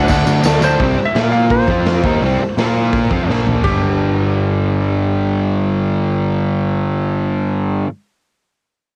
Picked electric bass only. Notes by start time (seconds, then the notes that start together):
0.09 D2
0.26 D2
0.43 D2
0.61 D2
0.80 C2
0.99 muted picked electric bass stroke
1.15 A#2
1.68 F2
2.04 D#2
2.21 C2
2.40 muted picked electric bass stroke
2.57 A#2
3.11 F2
3.28 A#1
3.64 G1